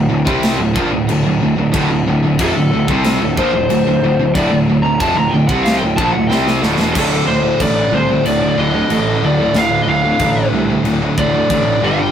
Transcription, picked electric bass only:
0.10 0.26 D1 medium
0.27 0.57 C2 medium
0.59 0.75 D1 medium
0.76 0.91 A#1 medium
0.93 1.08 D1 medium
1.08 1.24 D1 medium
1.25 1.40 D1 medium
1.42 1.56 D1 medium
1.57 1.73 D1 medium
1.74 1.89 D1 loud
1.90 2.05 D1 loud
2.06 2.22 D1 medium
2.23 2.38 D1 medium
2.39 2.54 F1 medium
2.55 2.71 D1 medium
2.73 2.87 D1 medium
2.88 3.18 C2 medium
3.21 3.36 D1 medium
3.38 3.53 A#1 loud
3.54 3.69 D1 medium
3.70 3.85 D1 medium
3.87 4.02 D1 medium
4.03 4.18 D1 medium
4.19 4.34 D1 medium
4.35 4.50 D1 loud
4.51 4.66 D1 medium
4.68 4.82 D1 medium
4.83 4.98 D1 medium
5.00 5.15 F1 medium
5.15 5.31 D1 medium
5.32 5.48 D1 medium
5.49 5.79 C2 loud
5.82 5.97 D1 medium
5.98 6.13 A#1 medium
6.14 6.29 D1 medium
6.30 6.61 C2 medium
6.62 6.77 D1 loud
6.78 6.94 E1 loud
6.95 7.19 D1 medium
7.28 7.52 D1 medium
7.60 7.84 A1 medium
7.92 8.17 C2 loud
8.25 8.49 D1 medium
8.58 8.82 D1 medium
8.91 9.14 A1 medium
9.22 9.47 D1 loud
9.54 9.79 D1 loud
9.87 10.12 D1 medium
10.20 10.44 A1 medium
10.52 10.76 C2 medium
10.84 11.08 D1 medium
11.18 11.42 D1 medium
11.49 11.74 A1 medium
11.82 12.06 G1 loud

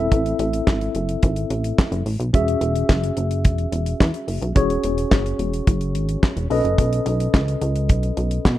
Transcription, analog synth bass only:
0.12 0.34 A1 loud
0.39 0.61 A1 medium
0.67 0.89 G#1 medium
0.95 1.17 F#1 medium
1.23 1.45 G#1 loud
1.50 1.72 A1 medium
1.92 2.03 F#1 medium
2.06 2.17 A1 medium
2.20 2.31 B1 medium
2.34 2.56 E1 loud
2.61 2.83 E1 loud
2.89 3.11 F#1 medium
3.17 3.46 F#1 medium
3.45 3.67 E1 loud
3.72 3.95 E1 medium
4.00 4.11 E2 medium
4.28 4.39 F#1 medium
4.42 4.53 B1 medium
4.56 4.78 E1 loud
4.84 5.06 E1 medium
5.11 5.34 F#1 loud
5.39 5.61 E1 medium
5.67 5.96 F#1 medium
5.95 6.17 G#1 loud
6.36 6.48 E1 medium
6.50 6.62 B1 medium
6.64 6.75 F#1 medium
6.78 7.00 B1 loud
7.06 7.28 B1 loud
7.34 7.56 C#2 medium
7.62 7.91 C#2 medium
7.90 8.12 B1 loud
8.17 8.39 B1 medium
8.45 8.56 B2 medium

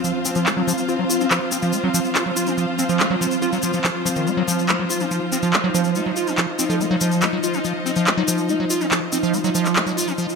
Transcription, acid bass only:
0.04 0.13 F3 medium
0.25 0.31 C4 medium
0.36 0.48 F3 loud
0.46 0.52 A3 medium
0.57 0.63 F#3 loud
0.67 0.73 F3 loud
0.89 0.97 F4 loud
0.99 1.05 F#3 medium
1.10 1.22 F4 medium
1.20 1.26 C4 medium
1.31 1.39 F3 medium
1.52 1.58 C4 medium
1.62 1.75 F3 loud
1.73 1.79 A3 medium
1.84 1.89 F#3 loud
1.94 2.00 F3 loud
2.15 2.24 F4 loud
2.26 2.32 F#3 medium
2.36 2.48 F4 medium
2.47 2.53 C4 medium
2.58 2.66 F3 medium
2.79 2.84 C4 medium
2.89 3.01 F3 loud
3.00 3.06 A3 medium
3.10 3.16 F#3 loud
3.21 3.27 F3 medium
3.42 3.51 F4 loud
3.53 3.58 F#3 medium
3.63 3.72 F3 medium
3.74 3.80 F3 medium
3.84 3.90 F3 medium
4.05 4.09 F3 loud
4.16 4.28 D#3 medium
4.27 4.32 A3 medium
4.37 4.43 F#3 loud
4.48 4.70 F3 loud
4.69 4.75 A3 loud
4.79 4.85 F#3 medium
4.90 5.02 F4 medium
5.00 5.06 C4 medium
5.11 5.20 F3 medium
5.32 5.38 C4 medium
5.43 5.55 F3 loud
5.53 5.59 A3 medium
5.64 5.70 F#3 loud
5.74 5.97 F3 loud
5.96 6.01 A3 loud
6.06 6.12 F#3 medium
6.17 6.29 F4 medium
6.27 6.33 C4 medium
6.38 6.46 F3 medium
6.59 6.65 C4 medium
6.70 6.82 F3 loud
6.80 6.86 A3 medium
6.91 6.96 F#3 loud
7.01 7.24 F3 loud
7.22 7.28 A3 loud
7.33 7.39 F#3 medium
7.43 7.56 F4 medium
7.54 7.60 C4 medium
7.65 7.73 F3 medium
7.86 7.92 C4 medium
7.96 8.08 F3 loud
8.07 8.13 A3 medium
8.17 8.23 F#3 loud
8.28 8.51 F3 medium
8.49 8.55 A3 loud
8.60 8.65 F#3 medium
8.70 8.82 F4 medium
8.81 8.87 C4 medium
8.91 9.00 F3 medium
9.12 9.18 C4 medium
9.23 9.35 F3 loud
9.34 9.39 A3 medium
9.44 9.50 F#3 loud
9.55 9.77 F3 loud
9.76 9.82 A3 loud
9.86 9.92 F#3 medium
9.97 10.09 F4 medium
10.08 10.13 C4 medium
10.18 10.27 F3 medium

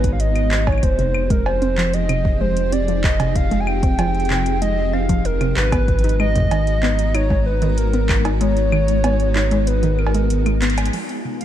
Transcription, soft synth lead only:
0.00 0.11 B4 medium
0.13 0.21 F5 medium
0.20 0.69 D#5 loud
0.67 0.84 C#5 medium
0.83 1.32 C5 loud
1.30 1.46 A#4 medium
1.46 1.95 C5 loud
1.93 2.40 D#5 loud
2.41 2.74 C5 medium
2.72 3.03 D5 loud
3.04 3.37 D#5 loud
3.36 3.62 F5 loud
3.60 3.69 G#5 medium
3.67 4.61 G5 loud
4.62 4.95 D#5 loud
4.93 5.27 F5 loud
5.25 5.56 A#4 loud
5.57 6.16 B4 loud
6.20 7.16 D#5 loud
7.15 7.45 C#5 loud
7.46 7.79 B4 medium
7.78 8.25 A#4 medium
8.41 9.69 C#5 loud
9.67 10.00 B4 loud
9.99 10.62 A#4 medium

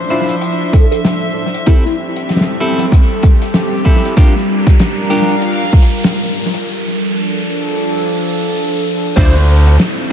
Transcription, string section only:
0.00 1.67 F3 medium
0.00 2.61 D4 medium
0.00 0.18 A4 medium
0.00 2.68 C5 medium
0.00 4.17 E5 medium
1.66 5.18 C4 medium
1.81 6.67 G4 medium
2.16 4.17 A4 medium
4.16 6.67 D4 medium
4.45 6.67 A#4 medium
4.98 6.67 F5 medium

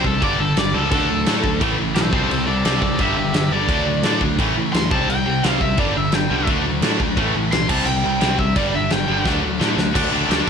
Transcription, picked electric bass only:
0.00 0.20 C2 medium
0.22 0.38 G1 medium
0.39 0.55 G1 medium
0.57 0.73 G1 medium
0.73 0.90 C#2 medium
0.92 1.24 D2 loud
1.27 1.43 A2 medium
1.44 1.60 D2 medium
1.61 1.77 A1 medium
1.79 1.95 A1 medium
1.96 2.12 B1 medium
2.12 2.29 C2 loud
2.30 2.47 C2 medium
2.47 2.64 C2 medium
2.65 2.98 C2 medium
2.99 3.16 G1 medium
3.17 3.34 G1 medium
3.34 3.51 G1 medium
3.51 3.68 G1 medium
3.68 4.02 D2 medium
4.02 4.20 A2 medium
4.21 4.38 D2 medium
4.38 4.55 A1 medium
4.56 4.72 A1 medium
4.75 4.91 D2 medium
4.91 5.07 C2 loud
5.08 5.25 C2 medium
5.27 5.43 C2 medium
5.45 5.77 C2 medium
5.78 5.94 G1 medium
5.96 6.12 G1 medium
6.13 6.29 G1 medium
6.30 6.47 C2 medium
6.48 6.81 D2 loud
6.82 6.99 A2 medium
7.00 7.16 D2 medium
7.17 7.33 A1 loud
7.35 7.52 A1 loud
7.53 7.69 B1 medium
7.69 7.86 C2 loud
7.88 8.04 C2 medium
8.06 8.21 C2 medium
8.23 8.55 C2 loud
8.56 8.73 G1 loud
8.75 8.91 G1 loud
8.92 9.08 G1 loud
9.08 9.27 G1 loud
9.25 9.59 D2 medium
9.61 9.76 A2 loud
9.77 9.94 D2 medium
9.95 10.07 D2 medium
10.11 10.23 D2 medium
10.29 10.41 D2 medium

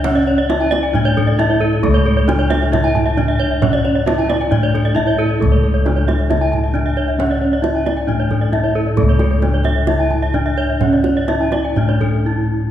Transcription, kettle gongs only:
0.00 0.92 C#2 medium
0.04 1.34 C#4 medium
0.49 0.57 D4 soft
0.94 2.24 A2 medium
1.39 1.47 D4 soft
1.83 3.13 A4 medium
1.88 4.50 C#2 medium
2.28 2.36 D4 soft
3.17 3.25 D4 soft
3.62 4.92 C#4 soft
4.07 4.15 D4 soft
4.51 5.81 A2 medium
4.97 5.04 D4 soft
5.40 6.70 A4 medium
5.45 8.07 C#2 medium
5.85 5.93 D4 soft
6.75 6.83 D4 soft
7.19 8.49 C#4 medium
8.08 9.38 A2 medium
8.53 8.61 D4 soft
8.97 10.30 A4 medium
9.02 11.75 C#2 medium
9.42 9.50 D4 soft
10.34 10.42 D4 soft
10.81 12.22 C#4 medium
11.29 11.37 D4 soft
11.77 12.71 A2 medium
12.25 12.33 D4 soft

